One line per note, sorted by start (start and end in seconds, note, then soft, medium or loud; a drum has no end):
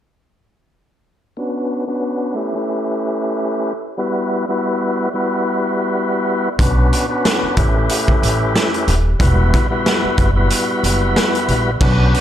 1.37 1.84 B3 medium
1.37 1.84 C#4 medium
1.37 1.85 D4 medium
1.37 1.85 F#4 medium
1.37 1.85 B4 loud
1.87 2.34 B3 medium
1.87 2.34 C#4 medium
1.87 2.35 D4 medium
1.87 2.35 F#4 medium
1.87 2.36 B4 loud
2.35 2.53 A3 medium
2.35 2.54 C#4 medium
2.35 2.54 E4 medium
2.35 2.55 G4 medium
2.35 2.55 B4 loud
2.54 3.73 A3 medium
2.54 3.73 C#4 medium
2.54 3.73 E4 medium
2.54 3.73 G4 medium
2.54 3.74 B4 loud
3.97 4.45 G3 medium
3.97 4.45 B3 medium
3.97 4.45 E4 medium
3.97 4.46 F#4 medium
3.97 4.46 B4 loud
4.48 5.08 G3 medium
4.48 5.09 B3 medium
4.48 5.09 E4 medium
4.48 5.09 F#4 medium
4.48 5.09 B4 loud
5.14 6.49 G3 medium
5.14 6.49 B3 medium
5.14 6.49 E4 medium
5.14 6.49 F#4 medium
5.14 6.50 B4 loud
6.58 6.89 B1 loud
6.58 7.06 B3 medium
6.58 7.06 C#4 medium
6.58 7.06 D4 medium
6.58 7.07 F#4 medium
6.58 7.07 B4 loud
6.58 kick loud
6.58 closed hi-hat medium
6.93 closed hi-hat medium
7.09 7.56 B3 medium
7.09 7.56 C#4 medium
7.09 7.57 D4 medium
7.09 7.57 F#4 medium
7.09 7.57 B4 loud
7.25 snare loud
7.25 closed hi-hat medium
7.43 muted upright bass stroke soft
7.56 7.87 A1 loud
7.56 7.75 A3 medium
7.56 7.75 C#4 medium
7.56 7.76 E4 medium
7.56 7.76 G4 medium
7.56 7.77 B4 loud
7.56 kick loud
7.56 closed hi-hat medium
7.76 8.94 A3 medium
7.76 8.95 C#4 medium
7.76 8.95 E4 medium
7.76 8.95 G4 medium
7.76 8.95 B4 loud
7.90 closed hi-hat loud
8.08 kick medium
8.22 8.52 A1 medium
8.22 closed hi-hat medium
8.56 snare loud
8.56 closed hi-hat medium
8.74 closed hi-hat medium
8.88 9.17 D#1 medium
8.88 closed hi-hat medium
9.19 9.50 E1 loud
9.19 9.67 G3 loud
9.19 9.67 B3 medium
9.19 9.67 E4 medium
9.19 9.67 F#4 medium
9.19 9.68 B4 loud
9.19 kick loud
9.19 closed hi-hat medium
9.54 kick loud
9.54 closed hi-hat medium
9.70 10.30 G3 medium
9.70 10.30 B3 medium
9.70 10.30 E4 medium
9.70 10.31 F#4 medium
9.70 10.31 B4 loud
9.86 snare loud
9.86 closed hi-hat medium
10.04 muted upright bass stroke soft
10.18 10.48 F#1 medium
10.18 kick medium
10.18 closed hi-hat medium
10.35 11.70 G3 medium
10.35 11.71 B3 medium
10.35 11.71 E4 medium
10.35 11.71 F#4 medium
10.35 11.71 B4 loud
10.50 closed hi-hat loud
10.83 11.13 F#1 medium
10.83 closed hi-hat medium
11.16 snare loud
11.16 closed hi-hat medium
11.35 closed hi-hat medium
11.48 11.78 A#1 medium
11.48 closed hi-hat medium
11.80 12.11 B1 loud
11.80 12.21 B3 medium
11.80 12.21 C#4 medium
11.80 12.21 D4 medium
11.80 12.21 F#4 medium
11.80 12.21 B4 loud
11.80 kick loud
11.80 crash medium
12.15 closed hi-hat medium